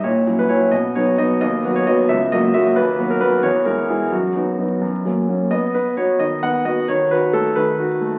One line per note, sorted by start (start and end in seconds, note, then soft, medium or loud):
0.04 0.27 A#2 soft
0.04 0.39 C#5 medium
0.27 0.48 F#3 soft
0.27 0.48 C#4 soft
0.27 0.48 E4 soft
0.39 0.50 B4 medium
0.49 0.70 F#3 soft
0.49 0.71 C#4 soft
0.49 0.71 E4 soft
0.49 0.73 C#5 medium
0.71 0.95 B2 soft
0.71 0.95 D#5 medium
0.95 1.17 F#3 soft
0.95 1.17 B3 soft
0.95 1.17 D#4 soft
0.95 1.19 C#5 medium
1.18 1.39 F#3 soft
1.18 1.40 B3 soft
1.18 1.40 D#4 soft
1.18 1.39 D#5 medium
1.41 1.64 D#2 medium
1.41 1.75 D#5 medium
1.64 1.85 F#3 soft
1.64 1.85 B3 soft
1.64 1.85 F#4 medium
1.76 1.87 C#5 medium
1.87 2.07 F#3 soft
1.87 2.07 B3 soft
1.87 2.08 F#4 soft
1.87 2.09 D#5 medium
2.09 2.31 C#2 medium
2.09 2.32 E5 medium
2.32 2.52 F#3 soft
2.32 2.52 A#3 soft
2.32 2.52 F#4 soft
2.32 2.54 D#5 medium
2.54 2.74 F#3 soft
2.54 2.74 A#3 soft
2.54 2.75 F#4 soft
2.54 2.76 E5 medium
2.76 2.98 D#2 medium
2.76 3.10 B4 medium
2.98 3.19 F#3 soft
2.98 3.19 B3 soft
2.98 3.19 F#4 soft
3.10 3.22 A#4 medium
3.20 3.41 F#3 soft
3.20 3.42 B3 soft
3.20 3.42 F#4 soft
3.20 3.44 B4 medium
3.43 3.66 E2 medium
3.43 3.66 C#5 medium
3.66 3.87 G#3 soft
3.66 3.87 E4 soft
3.66 3.89 A#4 medium
3.89 4.10 G#3 soft
3.89 4.11 E4 soft
3.89 4.13 G#4 soft
4.12 4.35 F#2 soft
4.12 4.82 F#4 medium
4.36 4.57 F#3 soft
4.36 4.57 B3 soft
4.36 4.57 D#4 soft
4.58 4.80 F#3 soft
4.58 4.80 B3 soft
4.58 4.80 D#4 soft
4.81 5.05 F#2 soft
5.05 5.26 F#3 soft
5.05 5.27 A#3 soft
5.05 5.27 C#4 soft
5.29 5.50 F#3 soft
5.29 5.50 A#3 soft
5.29 5.50 C#4 soft
5.51 5.73 B3 soft
5.51 5.74 D#5 medium
5.74 5.96 B3 soft
5.74 5.98 B4 medium
5.97 6.18 B3 soft
5.97 6.18 F#4 soft
5.97 6.20 C#5 medium
6.19 6.86 D#3 soft
6.19 6.43 D#5 medium
6.43 6.64 B3 soft
6.43 6.66 F#5 medium
6.65 6.86 B3 soft
6.65 6.86 F#4 soft
6.65 6.88 D#5 medium
6.88 7.55 D#3 medium
6.88 7.11 C#5 medium
7.11 7.47 F#4 soft
7.11 7.34 B4 medium
7.33 7.69 A3 soft
7.33 7.56 A4 medium
7.56 8.19 D#3 medium
7.56 8.19 B4 medium
7.79 8.14 F#4 soft
8.01 8.19 A3 soft